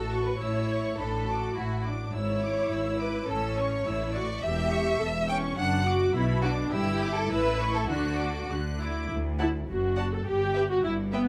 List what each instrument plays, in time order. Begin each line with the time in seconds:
Already playing: double bass section A1, cello section A2, viola section F#4, violin section A4
0.12 violin section C#6
0.27 violin section B4
0.41 double bass section A1, cello section A2, viola section E4, violin section C#5 E6
0.70 violin section C#6
0.98 double bass section A1, cello section A2, viola section D4, violin section A4 B5
1.28 viola section F#4, violin section D6
1.56 double bass section A1, cello section A2, viola section E4, violin section F#4 B5
1.84 viola section D4, violin section D6
2.13 double bass section G#1, cello section G#2, viola section E4, violin section C#5 E6
2.43 violin section D6
2.71 double bass section G#1, cello section G#2, violin section E6
3.00 violin section B4 D6
3.29 double bass section A1, cello section A2, viola section C#4, violin section A4 E6
3.57 violin section C#5 C#6
3.86 double bass section A1, cello section A2, viola section E4, violin section E6
4.14 viola section F#4, violin section D5 C#6
4.43 double bass section E1, cello section E2, viola section G4, violin section E5 E6
4.71 violin section C#6
4.99 double bass section E1, cello section E2, viola section A4, violin section E6
5.28 viola section C#4, violin section G5 C#6
5.56 double bass section F#1, cello section F#2, viola section D4, violin section F#5 F#6
5.86 viola section F#4, violin section D6
6.14 double bass section B1, cello section B2, viola section E4, violin section B5
6.43 viola section D4, violin section F#4 D6
6.72 double bass section G1, cello section G2, viola section E4, violin section G4 E6
7.01 violin section D6
7.15 violin section A4
7.30 double bass section A1, cello section A2, viola section E4, violin section B4 E6
7.61 violin section C#6
7.74 violin section A4
7.89 double bass section D2, cello section D3, viola section D4, violin section F#4 F#6
8.20 violin section D6
8.50 double bass section D2, cello section D3, viola section F#4, violin section F#6
8.81 viola section E4, violin section D6
9.10 cello section D2, double bass section D2
9.39 viola section E4, violin section D5 F#5 A5
9.68 double bass section F#1, cello section F#2, viola section F#4
9.96 violin section D5 F#5 A5
10.13 viola section A4
10.26 double bass section G1, cello section G2, viola section G4
10.55 violin section B4 E5 G5
10.70 viola section F#4
10.84 double bass section G1, cello section G2, viola section E4
11.13 viola section B3, violin section B4 E5 G5